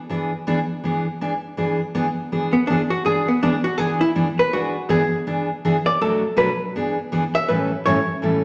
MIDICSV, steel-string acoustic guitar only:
0, 0, Header, 1, 2, 480
1, 0, Start_track
1, 0, Tempo, 369231
1, 126, Time_signature, 4, 2, 24, 8
1, 10975, End_track
2, 0, Start_track
2, 0, Title_t, "Steel-string acoustic guitar"
2, 0, Program_c, 0, 25
2, 123, Note_on_c, 0, 52, 56
2, 133, Note_on_c, 0, 59, 64
2, 136, Note_on_c, 0, 62, 64
2, 136, Note_on_c, 0, 68, 64
2, 402, Note_off_c, 0, 52, 0
2, 407, Note_off_c, 0, 59, 0
2, 408, Note_off_c, 0, 68, 0
2, 409, Note_off_c, 0, 62, 0
2, 609, Note_on_c, 0, 52, 72
2, 615, Note_on_c, 0, 62, 84
2, 619, Note_on_c, 0, 59, 79
2, 624, Note_on_c, 0, 68, 85
2, 755, Note_off_c, 0, 52, 0
2, 757, Note_off_c, 0, 62, 0
2, 760, Note_off_c, 0, 59, 0
2, 762, Note_off_c, 0, 68, 0
2, 1087, Note_on_c, 0, 52, 59
2, 1104, Note_on_c, 0, 59, 60
2, 1105, Note_on_c, 0, 68, 65
2, 1108, Note_on_c, 0, 62, 62
2, 1364, Note_off_c, 0, 52, 0
2, 1373, Note_off_c, 0, 59, 0
2, 1373, Note_off_c, 0, 68, 0
2, 1375, Note_off_c, 0, 62, 0
2, 1576, Note_on_c, 0, 52, 64
2, 1578, Note_on_c, 0, 59, 67
2, 1584, Note_on_c, 0, 62, 67
2, 1590, Note_on_c, 0, 68, 76
2, 1718, Note_off_c, 0, 52, 0
2, 1719, Note_off_c, 0, 59, 0
2, 1722, Note_off_c, 0, 62, 0
2, 1725, Note_off_c, 0, 68, 0
2, 2044, Note_on_c, 0, 52, 53
2, 2049, Note_on_c, 0, 59, 55
2, 2055, Note_on_c, 0, 62, 60
2, 2057, Note_on_c, 0, 68, 66
2, 2323, Note_off_c, 0, 52, 0
2, 2325, Note_off_c, 0, 59, 0
2, 2329, Note_off_c, 0, 62, 0
2, 2330, Note_off_c, 0, 68, 0
2, 2530, Note_on_c, 0, 52, 73
2, 2532, Note_on_c, 0, 59, 80
2, 2534, Note_on_c, 0, 62, 81
2, 2541, Note_on_c, 0, 68, 87
2, 2675, Note_off_c, 0, 52, 0
2, 2677, Note_off_c, 0, 59, 0
2, 2678, Note_off_c, 0, 62, 0
2, 2681, Note_off_c, 0, 68, 0
2, 3016, Note_on_c, 0, 52, 51
2, 3019, Note_on_c, 0, 59, 56
2, 3020, Note_on_c, 0, 62, 56
2, 3027, Note_on_c, 0, 68, 63
2, 3289, Note_off_c, 0, 52, 0
2, 3291, Note_off_c, 0, 59, 0
2, 3291, Note_off_c, 0, 62, 0
2, 3295, Note_off_c, 0, 68, 0
2, 3506, Note_on_c, 0, 52, 64
2, 3509, Note_on_c, 0, 59, 70
2, 3513, Note_on_c, 0, 62, 69
2, 3518, Note_on_c, 0, 68, 69
2, 3644, Note_off_c, 0, 52, 0
2, 3645, Note_off_c, 0, 59, 0
2, 3647, Note_off_c, 0, 62, 0
2, 3650, Note_off_c, 0, 68, 0
2, 3963, Note_on_c, 0, 52, 54
2, 3979, Note_on_c, 0, 59, 51
2, 3979, Note_on_c, 0, 62, 59
2, 3980, Note_on_c, 0, 68, 62
2, 4243, Note_off_c, 0, 52, 0
2, 4251, Note_off_c, 0, 59, 0
2, 4251, Note_off_c, 0, 62, 0
2, 4251, Note_off_c, 0, 68, 0
2, 4453, Note_on_c, 0, 52, 76
2, 4455, Note_on_c, 0, 62, 76
2, 4457, Note_on_c, 0, 59, 79
2, 4463, Note_on_c, 0, 68, 82
2, 4597, Note_off_c, 0, 52, 0
2, 4598, Note_off_c, 0, 62, 0
2, 4599, Note_off_c, 0, 59, 0
2, 4602, Note_off_c, 0, 68, 0
2, 4920, Note_on_c, 0, 52, 60
2, 4931, Note_on_c, 0, 59, 56
2, 4934, Note_on_c, 0, 62, 55
2, 4942, Note_on_c, 0, 68, 58
2, 5201, Note_off_c, 0, 52, 0
2, 5207, Note_off_c, 0, 59, 0
2, 5208, Note_off_c, 0, 62, 0
2, 5213, Note_off_c, 0, 68, 0
2, 5401, Note_on_c, 0, 52, 74
2, 5406, Note_on_c, 0, 59, 67
2, 5406, Note_on_c, 0, 62, 77
2, 5415, Note_on_c, 0, 68, 68
2, 5552, Note_off_c, 0, 52, 0
2, 5554, Note_off_c, 0, 59, 0
2, 5554, Note_off_c, 0, 62, 0
2, 5559, Note_off_c, 0, 68, 0
2, 5892, Note_on_c, 0, 52, 58
2, 5898, Note_on_c, 0, 62, 64
2, 5899, Note_on_c, 0, 59, 62
2, 5905, Note_on_c, 0, 68, 69
2, 6167, Note_off_c, 0, 52, 0
2, 6170, Note_off_c, 0, 62, 0
2, 6171, Note_off_c, 0, 59, 0
2, 6174, Note_off_c, 0, 68, 0
2, 6361, Note_on_c, 0, 52, 82
2, 6364, Note_on_c, 0, 59, 84
2, 6376, Note_on_c, 0, 62, 80
2, 6379, Note_on_c, 0, 68, 83
2, 6512, Note_off_c, 0, 52, 0
2, 6513, Note_off_c, 0, 59, 0
2, 6519, Note_off_c, 0, 62, 0
2, 6520, Note_off_c, 0, 68, 0
2, 6848, Note_on_c, 0, 52, 55
2, 6849, Note_on_c, 0, 59, 56
2, 6856, Note_on_c, 0, 62, 62
2, 6858, Note_on_c, 0, 68, 65
2, 7126, Note_off_c, 0, 52, 0
2, 7126, Note_off_c, 0, 59, 0
2, 7130, Note_off_c, 0, 62, 0
2, 7130, Note_off_c, 0, 68, 0
2, 7340, Note_on_c, 0, 52, 74
2, 7341, Note_on_c, 0, 62, 82
2, 7349, Note_on_c, 0, 59, 70
2, 7351, Note_on_c, 0, 68, 82
2, 7481, Note_off_c, 0, 52, 0
2, 7482, Note_off_c, 0, 62, 0
2, 7485, Note_off_c, 0, 59, 0
2, 7487, Note_off_c, 0, 68, 0
2, 7813, Note_on_c, 0, 47, 63
2, 7818, Note_on_c, 0, 54, 58
2, 7818, Note_on_c, 0, 57, 56
2, 7823, Note_on_c, 0, 66, 61
2, 7827, Note_on_c, 0, 62, 60
2, 8088, Note_off_c, 0, 47, 0
2, 8090, Note_off_c, 0, 54, 0
2, 8091, Note_off_c, 0, 57, 0
2, 8093, Note_off_c, 0, 66, 0
2, 8095, Note_off_c, 0, 62, 0
2, 8275, Note_on_c, 0, 47, 71
2, 8279, Note_on_c, 0, 54, 78
2, 8281, Note_on_c, 0, 57, 78
2, 8284, Note_on_c, 0, 62, 83
2, 8284, Note_on_c, 0, 66, 85
2, 8428, Note_off_c, 0, 47, 0
2, 8430, Note_off_c, 0, 54, 0
2, 8431, Note_off_c, 0, 57, 0
2, 8433, Note_off_c, 0, 62, 0
2, 8433, Note_off_c, 0, 66, 0
2, 8781, Note_on_c, 0, 52, 57
2, 8786, Note_on_c, 0, 59, 59
2, 8790, Note_on_c, 0, 62, 57
2, 8798, Note_on_c, 0, 68, 65
2, 9052, Note_off_c, 0, 52, 0
2, 9054, Note_off_c, 0, 59, 0
2, 9057, Note_off_c, 0, 62, 0
2, 9061, Note_off_c, 0, 68, 0
2, 9256, Note_on_c, 0, 52, 69
2, 9262, Note_on_c, 0, 68, 78
2, 9266, Note_on_c, 0, 59, 65
2, 9268, Note_on_c, 0, 62, 71
2, 9399, Note_off_c, 0, 52, 0
2, 9402, Note_off_c, 0, 68, 0
2, 9404, Note_off_c, 0, 59, 0
2, 9405, Note_off_c, 0, 62, 0
2, 9739, Note_on_c, 0, 45, 55
2, 9740, Note_on_c, 0, 55, 59
2, 9743, Note_on_c, 0, 52, 54
2, 9746, Note_on_c, 0, 61, 64
2, 9749, Note_on_c, 0, 64, 60
2, 9751, Note_on_c, 0, 69, 65
2, 10011, Note_off_c, 0, 45, 0
2, 10011, Note_off_c, 0, 55, 0
2, 10013, Note_off_c, 0, 52, 0
2, 10015, Note_off_c, 0, 61, 0
2, 10016, Note_off_c, 0, 64, 0
2, 10017, Note_off_c, 0, 69, 0
2, 10219, Note_on_c, 0, 45, 77
2, 10219, Note_on_c, 0, 55, 78
2, 10222, Note_on_c, 0, 52, 78
2, 10223, Note_on_c, 0, 64, 81
2, 10224, Note_on_c, 0, 61, 82
2, 10234, Note_on_c, 0, 69, 78
2, 10360, Note_off_c, 0, 45, 0
2, 10360, Note_off_c, 0, 55, 0
2, 10362, Note_off_c, 0, 52, 0
2, 10362, Note_off_c, 0, 64, 0
2, 10363, Note_off_c, 0, 61, 0
2, 10368, Note_off_c, 0, 69, 0
2, 10686, Note_on_c, 0, 45, 55
2, 10695, Note_on_c, 0, 52, 54
2, 10696, Note_on_c, 0, 61, 59
2, 10702, Note_on_c, 0, 55, 53
2, 10707, Note_on_c, 0, 64, 58
2, 10707, Note_on_c, 0, 69, 61
2, 10964, Note_off_c, 0, 45, 0
2, 10968, Note_off_c, 0, 52, 0
2, 10969, Note_off_c, 0, 61, 0
2, 10972, Note_off_c, 0, 55, 0
2, 10975, Note_off_c, 0, 64, 0
2, 10975, Note_off_c, 0, 69, 0
2, 10975, End_track
0, 0, End_of_file